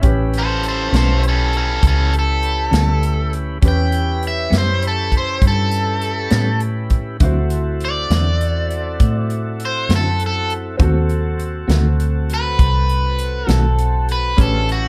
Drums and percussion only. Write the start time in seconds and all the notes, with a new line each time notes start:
0.02 kick, closed hi-hat
0.33 closed hi-hat
0.63 closed hi-hat
0.94 snare, closed hi-hat
1.23 closed hi-hat
1.53 closed hi-hat
1.83 kick, closed hi-hat
2.13 closed hi-hat
2.42 closed hi-hat
2.73 snare, closed hi-hat
3.03 closed hi-hat
3.33 closed hi-hat
3.62 kick, closed hi-hat
3.92 closed hi-hat
4.22 closed hi-hat
4.52 snare, closed hi-hat
4.82 closed hi-hat
5.12 kick, closed hi-hat
5.42 kick, closed hi-hat
5.71 closed hi-hat
6.01 closed hi-hat
6.30 snare, closed hi-hat
6.60 closed hi-hat
6.90 kick, closed hi-hat
7.20 kick, closed hi-hat
7.50 closed hi-hat
7.80 closed hi-hat
8.10 snare, closed hi-hat
8.41 closed hi-hat
8.70 closed hi-hat
9.00 kick, closed hi-hat
9.30 closed hi-hat
9.60 closed hi-hat
9.89 snare, closed hi-hat
10.19 closed hi-hat
10.50 closed hi-hat
10.79 kick, closed hi-hat
11.09 closed hi-hat
11.39 closed hi-hat
11.69 snare, closed hi-hat
12.00 closed hi-hat
12.29 closed hi-hat
12.59 kick, closed hi-hat
12.89 closed hi-hat
13.18 closed hi-hat
13.48 snare, closed hi-hat
13.78 closed hi-hat
14.08 closed hi-hat
14.38 kick, closed hi-hat
14.69 closed hi-hat